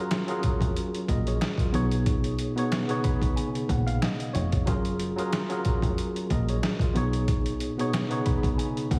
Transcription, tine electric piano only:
Already playing: F#3 C#4 F4 G#4 A#4
0.27 F#3 C#4 F4 G#4 A#4
1.09 A#4 D#5
1.28 G#4 C#5
1.59 F4 A#4
1.72 B2 B3 D#4 G#4 C#5
2.55 B2 B3 D#4 G#4 C#5
2.87 C#3 B3 D#4 G#4 C#5
3.04 B5
3.36 G#5
3.69 F#5
3.87 F5
4.02 D#5
4.34 C#5
4.65 F#3 C#4 F4 G#4 A#4
5.16 F#3 C#4 F4 G#4 A#4
5.49 F#3 C#4 F4 G#4 A#4
6.31 A#4 D#5
6.49 G#4 C#5
6.81 F4 A#4
6.94 B2 B3 D#4 G#4 C#5
7.77 B2 B3 D#4 G#4 C#5
8.09 C#3 B3 D#4 G#4 C#5
8.25 B5
8.58 G#5
8.91 F#5

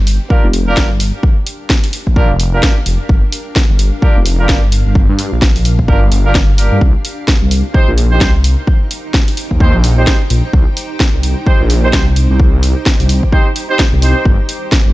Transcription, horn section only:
0.30 A#3 D4 F4 G4 A#4
0.67 A#3 D4 F4 G4 A#4
2.16 A#3 D4 F4 G4 A#4
2.53 A#3 D4 F4 G4 A#4
4.02 A#3 D4 F4 G4 A#4
4.39 A#3 D4 F4 G4 A#4
5.88 A#3 D4 F4 G4 A#4
6.25 A#3 D4 F4 G4 A#4
6.58 A#3 D4 F4 G4 A#4
7.74 C4 D#4 G4 C5
8.12 C4 D#4 G4 C5
9.60 C4 D#4 G4 C5
9.97 C4 D#4 G4 C5
11.47 C4 D#4 G4 C5
11.84 C4 D#4 G4 C5
13.33 C4 D#4 G4 C5
13.70 C4 D#4 G4 C5
14.02 C4 D#4 G4 C5

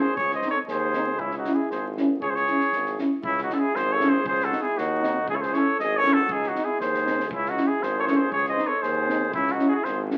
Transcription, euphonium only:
0.45 C4
0.96 C4
1.46 C#4
1.98 C#4
2.49 C#4
2.99 C#4
3.51 C#4
4.01 C#4
4.51 C4
5.02 C4
5.54 C#4
6.05 C#4
6.56 C4
7.06 C4
7.57 C#4
8.08 C#4
8.57 C4
9.07 C4
9.59 C#4
10.10 C#4

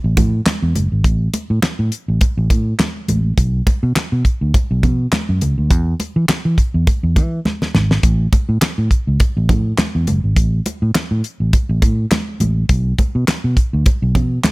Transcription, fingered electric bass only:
0.04 A1
0.17 A2
0.62 E2
0.76 F#1
0.92 G#1
1.04 A1
1.50 A2
1.63 muted fingered electric bass stroke
1.79 A2
2.08 A1
2.37 A1
2.50 A2
3.08 A1
3.38 B1
3.83 B2
3.96 muted fingered electric bass stroke
4.12 B2
4.41 D2
4.71 B1
4.83 B2
5.29 F#2
5.42 C#2
5.58 D2
5.71 E2
6.16 E3
6.29 muted fingered electric bass stroke
6.45 E3
6.74 E2
7.03 E2
7.16 E3
7.74 G#1
8.03 A1
8.49 A2
8.62 muted fingered electric bass stroke
8.78 A2
9.07 C#2
9.37 A1
9.49 A2
9.95 E2
10.08 F#1
10.24 G#1
10.36 A1
10.82 A2
10.95 muted fingered electric bass stroke
11.11 A2
11.40 A1
11.69 A1
11.82 A2
12.40 A1
12.69 B1
13.15 B2
13.28 muted fingered electric bass stroke
13.44 B2
13.73 D2
14.02 B1
14.15 B2

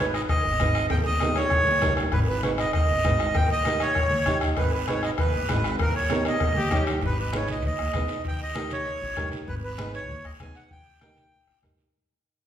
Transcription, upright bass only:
Already playing: G#1
0.29 D#2
0.45 G#1
0.60 G#1
0.90 D#2
1.51 A#1
1.67 D#2
1.82 C#2
1.98 A#1
2.13 G#1
2.74 D#2
2.89 G#1
3.04 G#1
3.35 D#2
3.96 A#1
4.12 D#2
4.27 D#2
4.57 G#1
5.18 D#2
5.35 G#1
5.49 G#1
5.80 D#2
6.41 A#1
6.57 D#2
6.72 D#2
7.02 G#1
7.64 D#2
7.80 D#2
7.94 B1
8.25 D#2
8.87 A#1
9.02 A#1
9.17 G2
9.48 G#1
10.10 D#2
10.25 D#2
10.40 B1
10.71 D#2
11.33 A#1
11.47 A#1
11.63 G2

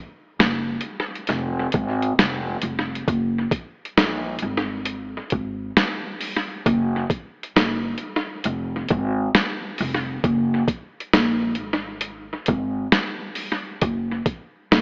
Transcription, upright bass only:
0.39 F#1
1.29 F1
1.75 G#1
2.19 F1
2.63 F1
3.08 F#1
3.97 A#1
4.42 G#1
5.33 G#1
6.66 F#1
7.56 F#1
8.45 F1
8.91 G#1
9.80 F1
10.24 F#1
11.15 A#1
11.59 G#1
12.49 G#1
13.82 F#1
14.72 F#1

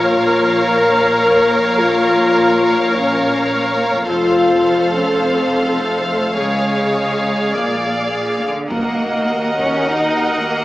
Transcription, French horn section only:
Already playing: F4
0.66 A#4
1.78 F4
2.94 C#4
4.07 F4
4.93 C#4
5.23 C4
5.81 A3
6.40 G#3
7.55 A#3
8.72 F#4 D#5

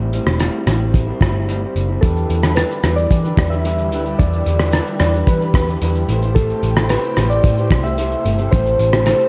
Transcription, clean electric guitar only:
Already playing: A2 G3 C4 E4
0.12 A2 G3 C4 E4
0.39 A2 G3 C4 E4
0.66 A2 G3 C4 E4
0.80 G3 C4 E4
1.07 G3 C4 E4
1.20 A2 G3 C4 E4
1.48 A2 G3 C4 E4
1.61 G3 C4 E4
1.88 G3 C4 E4
2.02 E3 D4 G4 B4
2.43 D4 G4 B4
2.56 E3 D4 G4 B4
2.83 E3 D4 G4 B4
3.24 D4 G4 B4
3.51 D4 G4 B4
3.64 E3 D4 G4 B4
3.92 E3 D4 G4 B4
4.04 D4 G4 B4
4.19 E3 D4 G4 B4
4.59 D4 G4 B4
4.73 E3 D4 G4 B4
5.00 E3 D4 G4 B4
5.13 D4 G4 B4
5.40 D4 G4 B4
5.67 D4 G4 B4
5.82 E3 D4 G4 B4
6.08 A3 E4 G4 C5
6.22 E4 G4 C5
6.35 A3 E4 G4 C5
6.76 E4 G4 C5
6.89 A3 E4 G4 C5
7.16 A3 E4 G4
7.20 C5
7.57 E4 G4 C5
7.84 E4 G4 C5
7.97 A3 E4 G4 C5
8.25 A3 E4 G4 C5
8.38 E4 G4 C5
8.52 A3 E4 G4 C5
8.92 E4 G4 C5
9.06 A3 E4 G4 C5

